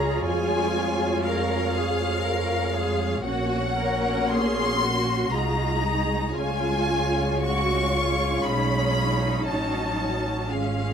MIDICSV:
0, 0, Header, 1, 6, 480
1, 0, Start_track
1, 0, Key_signature, -5, "major"
1, 0, Tempo, 993377
1, 125, Time_signature, 3, 2, 24, 8
1, 1566, Tempo, 1073345
1, 2046, Tempo, 1013514
1, 3006, Tempo, 1096892
1, 3486, Tempo, 1018676
1, 5133, End_track
2, 0, Start_track
2, 0, Title_t, "Violin section"
2, 0, Program_c, 0, 48
2, 0, Note_on_c, 0, 82, 78
2, 126, Note_off_c, 0, 82, 0
2, 126, Note_on_c, 0, 80, 96
2, 595, Note_off_c, 0, 80, 0
2, 606, Note_on_c, 0, 77, 94
2, 1548, Note_off_c, 0, 77, 0
2, 1572, Note_on_c, 0, 78, 91
2, 2039, Note_off_c, 0, 78, 0
2, 2047, Note_on_c, 0, 84, 103
2, 2525, Note_off_c, 0, 84, 0
2, 2530, Note_on_c, 0, 82, 85
2, 3002, Note_on_c, 0, 80, 98
2, 3009, Note_off_c, 0, 82, 0
2, 3483, Note_on_c, 0, 85, 98
2, 3484, Note_off_c, 0, 80, 0
2, 3956, Note_off_c, 0, 85, 0
2, 3964, Note_on_c, 0, 83, 93
2, 4443, Note_off_c, 0, 83, 0
2, 4448, Note_on_c, 0, 81, 80
2, 4918, Note_off_c, 0, 81, 0
2, 4926, Note_on_c, 0, 77, 75
2, 5133, Note_off_c, 0, 77, 0
2, 5133, End_track
3, 0, Start_track
3, 0, Title_t, "Violin section"
3, 0, Program_c, 1, 48
3, 0, Note_on_c, 1, 68, 56
3, 0, Note_on_c, 1, 73, 55
3, 1548, Note_off_c, 1, 68, 0
3, 1549, Note_off_c, 1, 73, 0
3, 1567, Note_on_c, 1, 66, 62
3, 1567, Note_on_c, 1, 73, 58
3, 2506, Note_off_c, 1, 73, 0
3, 2529, Note_on_c, 1, 68, 57
3, 2987, Note_off_c, 1, 66, 0
3, 2989, Note_off_c, 1, 68, 0
3, 3011, Note_on_c, 1, 65, 60
3, 3011, Note_on_c, 1, 73, 64
3, 4429, Note_off_c, 1, 65, 0
3, 4449, Note_on_c, 1, 66, 54
3, 4910, Note_off_c, 1, 66, 0
3, 4910, Note_off_c, 1, 73, 0
3, 4925, Note_on_c, 1, 65, 51
3, 4929, Note_on_c, 1, 68, 51
3, 5133, Note_off_c, 1, 65, 0
3, 5133, Note_off_c, 1, 68, 0
3, 5133, End_track
4, 0, Start_track
4, 0, Title_t, "Cello section"
4, 0, Program_c, 2, 48
4, 0, Note_on_c, 2, 68, 57
4, 122, Note_on_c, 2, 65, 67
4, 126, Note_off_c, 2, 68, 0
4, 593, Note_off_c, 2, 65, 0
4, 607, Note_on_c, 2, 70, 73
4, 844, Note_off_c, 2, 70, 0
4, 847, Note_on_c, 2, 68, 60
4, 1078, Note_on_c, 2, 70, 64
4, 1085, Note_off_c, 2, 68, 0
4, 1321, Note_off_c, 2, 70, 0
4, 1326, Note_on_c, 2, 68, 63
4, 1565, Note_on_c, 2, 66, 71
4, 1567, Note_off_c, 2, 68, 0
4, 1798, Note_off_c, 2, 66, 0
4, 1807, Note_on_c, 2, 70, 66
4, 2043, Note_off_c, 2, 70, 0
4, 2051, Note_on_c, 2, 68, 64
4, 2291, Note_off_c, 2, 68, 0
4, 2293, Note_on_c, 2, 66, 66
4, 2527, Note_off_c, 2, 66, 0
4, 2529, Note_on_c, 2, 65, 59
4, 2764, Note_off_c, 2, 65, 0
4, 2766, Note_on_c, 2, 63, 58
4, 3006, Note_on_c, 2, 65, 73
4, 3008, Note_off_c, 2, 63, 0
4, 3476, Note_off_c, 2, 65, 0
4, 3484, Note_on_c, 2, 66, 66
4, 3723, Note_off_c, 2, 66, 0
4, 3733, Note_on_c, 2, 65, 65
4, 3966, Note_on_c, 2, 63, 64
4, 3969, Note_off_c, 2, 65, 0
4, 4926, Note_off_c, 2, 63, 0
4, 4926, Note_on_c, 2, 61, 58
4, 5133, Note_off_c, 2, 61, 0
4, 5133, End_track
5, 0, Start_track
5, 0, Title_t, "Viola section"
5, 0, Program_c, 3, 48
5, 0, Note_on_c, 3, 56, 58
5, 0, Note_on_c, 3, 65, 58
5, 1549, Note_off_c, 3, 65, 0
5, 1550, Note_off_c, 3, 56, 0
5, 1569, Note_on_c, 3, 58, 64
5, 1571, Note_on_c, 3, 61, 64
5, 2507, Note_off_c, 3, 58, 0
5, 2508, Note_off_c, 3, 61, 0
5, 2534, Note_on_c, 3, 56, 51
5, 2536, Note_on_c, 3, 63, 54
5, 2993, Note_off_c, 3, 63, 0
5, 3016, Note_on_c, 3, 61, 59
5, 4431, Note_off_c, 3, 56, 0
5, 4451, Note_on_c, 3, 54, 58
5, 4911, Note_off_c, 3, 54, 0
5, 4934, Note_on_c, 3, 56, 61
5, 5133, Note_off_c, 3, 56, 0
5, 5133, Note_off_c, 3, 61, 0
5, 5133, End_track
6, 0, Start_track
6, 0, Title_t, "Double bass section"
6, 0, Program_c, 4, 48
6, 0, Note_on_c, 4, 37, 62
6, 106, Note_off_c, 4, 37, 0
6, 126, Note_on_c, 4, 41, 67
6, 1547, Note_off_c, 4, 41, 0
6, 1571, Note_on_c, 4, 34, 59
6, 2508, Note_off_c, 4, 34, 0
6, 2527, Note_on_c, 4, 36, 62
6, 3007, Note_off_c, 4, 36, 0
6, 3013, Note_on_c, 4, 37, 66
6, 3952, Note_off_c, 4, 37, 0
6, 3972, Note_on_c, 4, 35, 61
6, 4438, Note_off_c, 4, 35, 0
6, 4451, Note_on_c, 4, 33, 56
6, 4920, Note_off_c, 4, 33, 0
6, 4929, Note_on_c, 4, 32, 59
6, 5133, Note_off_c, 4, 32, 0
6, 5133, End_track
0, 0, End_of_file